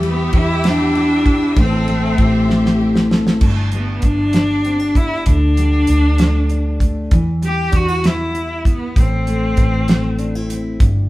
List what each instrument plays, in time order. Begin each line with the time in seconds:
Already playing: fingered electric bass E2, steel-string acoustic guitar E3, string section G4 E5 B5 E6, violin section G4
0.01 steel-string acoustic guitar G3, ride
0.08 cello B3
0.32 fingered electric bass E2, steel-string acoustic guitar E4, kick, ride
0.38 cello E4
0.64 steel-string acoustic guitar B3, snare, ride
0.68 cello D4
0.95 steel-string acoustic guitar E4, ride
1.25 steel-string acoustic guitar B3, kick, ride
1.56 fingered electric bass A1, steel-string acoustic guitar A2, string section A4 E5 C6, violin section A4, kick, ride
1.60 cello C4
1.88 steel-string acoustic guitar A3, ride
2.18 fingered electric bass A1, steel-string acoustic guitar E4, violin section G4, kick, ride
2.49 steel-string acoustic guitar C4, snare
2.66 snare
2.81 steel-string acoustic guitar E4
2.96 snare
3.10 steel-string acoustic guitar C4, violin section A4, snare
3.27 snare
3.41 fingered electric bass G1, steel-string acoustic guitar G2, kick, crash
3.72 steel-string acoustic guitar G3, cello B3, closed hi-hat
4.02 fingered electric bass G1, steel-string acoustic guitar D4, cello D4, kick, closed hi-hat
4.33 steel-string acoustic guitar B3, snare, closed hi-hat
4.65 steel-string acoustic guitar C4, closed hi-hat
4.80 steel-string acoustic guitar D4
4.95 steel-string acoustic guitar B3, cello E4, kick, closed hi-hat
5.26 fingered electric bass D2, steel-string acoustic guitar D3, cello D4, kick, closed hi-hat
5.57 steel-string acoustic guitar G3, closed hi-hat
5.87 fingered electric bass D2, steel-string acoustic guitar D4, closed hi-hat
6.18 steel-string acoustic guitar A3, snare, closed hi-hat
6.49 steel-string acoustic guitar D4, closed hi-hat
6.80 steel-string acoustic guitar A3, kick, closed hi-hat
7.11 fingered electric bass E2, steel-string acoustic guitar E3, kick, closed hi-hat
7.42 steel-string acoustic guitar G3, closed hi-hat
7.46 cello G4
7.71 fingered electric bass E2, steel-string acoustic guitar D4, kick, closed hi-hat
7.76 cello F#4
7.88 steel-string acoustic guitar E4
8.04 steel-string acoustic guitar B3, cello E4, snare, closed hi-hat
8.35 steel-string acoustic guitar E4, closed hi-hat
8.65 steel-string acoustic guitar B3, cello B3, kick, closed hi-hat
8.96 fingered electric bass A1, steel-string acoustic guitar A2, cello C4, kick, closed hi-hat
9.27 steel-string acoustic guitar A3, closed hi-hat
9.57 fingered electric bass A1, steel-string acoustic guitar E4, kick, closed hi-hat
9.88 steel-string acoustic guitar C4, snare, closed hi-hat
10.19 steel-string acoustic guitar D4, closed hi-hat
10.35 steel-string acoustic guitar E4
10.50 steel-string acoustic guitar C4, closed hi-hat
10.80 fingered electric bass G1, steel-string acoustic guitar G2, kick, closed hi-hat